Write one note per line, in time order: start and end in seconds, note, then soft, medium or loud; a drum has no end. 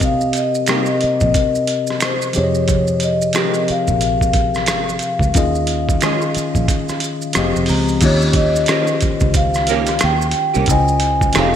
0.00 0.32 C2 medium
0.00 0.58 C3 medium
0.00 0.58 C4 medium
0.00 0.59 G4 medium
0.00 0.59 A#4 medium
0.00 0.63 D#5 medium
0.00 0.37 F5 medium
0.00 kick medium
0.00 closed hi-hat medium
0.00 maracas medium
0.21 maracas soft
0.33 0.99 D#5 medium
0.33 closed hi-hat medium
0.33 maracas soft
0.55 maracas soft
0.66 1.87 C3 medium
0.66 0.87 G3 medium
0.66 0.87 A#3 medium
0.66 1.88 C4 medium
0.66 0.88 D#4 medium
0.66 1.88 G4 medium
0.66 0.88 G4 medium
0.66 1.89 A#4 medium
0.66 finger snap medium
0.66 cross-stick medium
0.66 closed hi-hat medium
0.66 maracas medium
0.71 1.89 D#5 medium
0.86 maracas soft
1.01 2.05 D#5 medium
1.01 muted fingered electric bass stroke soft
1.01 closed hi-hat soft
1.20 1.34 A#1 medium
1.20 kick medium
1.20 maracas soft
1.34 kick medium
1.34 closed hi-hat medium
1.34 maracas soft
1.55 maracas soft
1.67 closed hi-hat medium
1.87 cross-stick soft
1.87 maracas soft
2.00 2.37 C5 medium
2.00 finger snap medium
2.00 cross-stick medium
2.00 closed hi-hat medium
2.00 maracas medium
2.22 maracas soft
2.33 3.24 C3 medium
2.33 3.24 F3 medium
2.33 3.25 G4 medium
2.33 3.25 G#4 medium
2.33 2.98 C#5 medium
2.33 closed hi-hat medium
2.33 maracas soft
2.37 3.32 F2 medium
2.37 2.44 C#5 medium
2.44 3.29 D#5 medium
2.55 maracas soft
2.68 kick loud
2.68 closed hi-hat medium
2.68 maracas medium
2.87 maracas soft
3.00 closed hi-hat medium
3.00 maracas soft
3.04 3.71 D#5 medium
3.22 maracas soft
3.33 3.54 D#3 medium
3.33 4.54 F3 medium
3.33 3.54 G#3 medium
3.33 4.54 C4 medium
3.33 3.54 C4 medium
3.33 4.55 G4 medium
3.33 3.55 G4 medium
3.33 4.55 G#4 medium
3.33 finger snap soft
3.33 cross-stick medium
3.33 closed hi-hat medium
3.33 maracas medium
3.38 4.56 A#4 medium
3.54 maracas soft
3.68 4.03 F5 medium
3.68 muted fingered electric bass stroke soft
3.68 closed hi-hat medium
3.88 4.70 A#1 medium
3.88 kick medium
3.88 maracas soft
4.01 7.32 F5 medium
4.01 closed hi-hat medium
4.01 maracas medium
4.21 kick medium
4.21 maracas soft
4.33 kick medium
4.33 closed hi-hat medium
4.54 cross-stick soft
4.54 maracas soft
4.66 4.99 G#1 medium
4.66 finger snap medium
4.66 cross-stick medium
4.66 closed hi-hat medium
4.66 maracas medium
4.89 maracas soft
4.99 closed hi-hat medium
4.99 maracas soft
5.19 5.33 C#2 medium
5.19 kick medium
5.19 maracas soft
5.34 5.98 D#2 loud
5.34 5.94 D#3 medium
5.34 5.95 C#4 medium
5.34 5.95 F4 medium
5.34 5.96 G#4 medium
5.34 5.96 D#5 medium
5.34 kick medium
5.34 closed hi-hat medium
5.34 maracas medium
5.55 maracas soft
5.67 closed hi-hat medium
5.89 kick medium
5.89 maracas soft
6.01 7.21 D#3 medium
6.01 6.21 G#3 medium
6.01 6.21 C#4 medium
6.01 7.22 C#4 medium
6.01 6.21 F4 medium
6.01 7.22 F4 medium
6.01 6.22 G#4 medium
6.01 7.22 G#4 medium
6.01 finger snap medium
6.01 cross-stick medium
6.01 closed hi-hat medium
6.01 maracas medium
6.06 7.23 D#5 medium
6.22 maracas soft
6.35 muted fingered electric bass stroke soft
6.35 closed hi-hat soft
6.35 maracas soft
6.55 6.68 A#1 medium
6.55 kick medium
6.55 maracas soft
6.68 kick medium
6.68 closed hi-hat medium
6.68 maracas medium
6.89 cross-stick soft
6.89 maracas soft
7.00 closed hi-hat medium
7.00 maracas soft
7.22 maracas soft
7.33 7.53 F1 medium
7.33 7.94 F3 medium
7.33 7.95 C4 medium
7.33 7.95 G4 medium
7.33 7.67 F5 medium
7.33 finger snap medium
7.33 cross-stick medium
7.33 closed hi-hat medium
7.33 maracas medium
7.38 7.96 G#4 medium
7.38 7.96 D#5 medium
7.56 7.68 F1 medium
7.56 maracas soft
7.66 8.00 A#5 medium
7.66 open hi-hat soft
7.66 maracas soft
7.70 7.99 C#2 medium
7.88 maracas soft
8.01 8.65 D#2 loud
8.01 8.61 D#3 medium
8.01 8.62 C#4 medium
8.01 8.62 F4 medium
8.01 8.63 G4 medium
8.01 8.37 C#5 medium
8.01 kick medium
8.01 closed hi-hat medium
8.01 crash medium
8.01 maracas medium
8.05 8.63 D#5 medium
8.22 maracas soft
8.33 9.31 D#5 medium
8.33 kick medium
8.33 closed hi-hat medium
8.56 maracas soft
8.66 9.88 D#3 medium
8.66 8.87 D#3 medium
8.66 8.87 A#3 medium
8.66 9.88 C#4 medium
8.66 8.88 C#4 medium
8.66 9.89 F4 medium
8.66 8.88 G4 medium
8.66 finger snap medium
8.66 cross-stick medium
8.66 closed hi-hat medium
8.66 maracas medium
8.71 9.89 G4 medium
8.71 9.89 C5 medium
8.87 maracas soft
9.01 muted fingered electric bass stroke soft
9.01 kick medium
9.01 closed hi-hat medium
9.01 maracas soft
9.20 9.98 C#2 medium
9.20 kick medium
9.20 maracas soft
9.34 10.04 F5 medium
9.34 muted hollow-body jazz guitar stroke soft
9.34 kick medium
9.34 closed hi-hat medium
9.34 maracas medium
9.54 cross-stick soft
9.54 maracas soft
9.67 9.87 D#3 medium
9.67 9.88 A#3 medium
9.67 9.88 C#4 medium
9.67 9.88 G4 medium
9.67 closed hi-hat medium
9.67 maracas soft
9.86 cross-stick soft
9.86 closed hi-hat soft
9.86 maracas soft
9.99 finger snap medium
9.99 cross-stick medium
9.99 closed hi-hat medium
9.99 maracas medium
10.04 10.33 D#2 medium
10.04 10.71 G5 medium
10.22 maracas medium
10.31 closed hi-hat medium
10.54 10.68 C2 medium
10.54 10.66 D#3 medium
10.54 10.65 A#3 medium
10.54 10.65 C#4 medium
10.54 10.65 G4 medium
10.54 maracas soft
10.66 11.31 C#2 medium
10.66 11.28 C#3 medium
10.66 11.28 C#4 medium
10.66 10.76 E4 medium
10.66 kick loud
10.66 closed hi-hat medium
10.66 maracas medium
10.70 11.29 C5 medium
10.70 11.29 D#5 medium
10.70 11.38 G#5 medium
10.76 11.32 F4 medium
10.88 maracas soft
11.00 closed hi-hat medium
11.21 kick medium
11.21 maracas soft
11.33 11.56 F3 medium
11.33 11.54 F3 medium
11.33 11.54 A3 medium
11.33 11.56 C4 medium
11.33 11.55 D#4 loud
11.33 11.56 G4 medium
11.33 finger snap medium
11.33 cross-stick medium
11.33 closed hi-hat medium
11.33 maracas medium
11.37 11.56 F1 medium
11.37 11.55 G4 loud
11.37 11.56 A4 medium
11.37 11.44 C#5 soft
11.37 11.56 F5 medium
11.45 11.56 D#5 medium